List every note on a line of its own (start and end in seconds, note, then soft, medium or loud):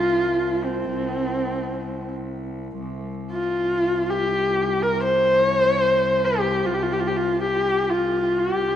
0.00 2.79 C2 medium
0.00 0.66 F4 medium
0.64 2.14 C4 medium
2.80 8.60 C2 medium
3.32 4.11 F4 medium
4.09 4.84 G4 medium
4.82 5.03 A#4 medium
5.03 5.45 C5 medium
5.45 5.56 C#5 medium
5.56 6.26 C5 medium
6.24 6.68 G4 medium
6.66 6.76 F4 medium
6.74 6.84 G4 medium
6.83 6.94 F4 medium
6.92 7.01 G4 medium
7.00 7.09 F4 medium
7.08 7.18 G4 medium
7.17 7.42 F4 medium
7.42 7.91 G4 medium
7.90 8.40 F4 medium
8.39 8.76 G4 medium
8.61 8.76 C2 medium